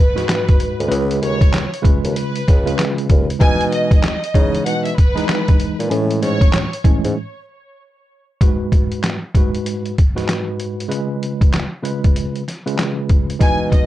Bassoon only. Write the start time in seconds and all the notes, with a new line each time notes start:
0.79 D2
0.90 C#2
1.22 D#2
2.04 D#2
2.48 C#2
3.10 D#2
3.41 B2
4.34 C#3
4.66 B2
5.79 A#2
5.91 A2
6.22 G#2
7.04 G#2
13.41 B2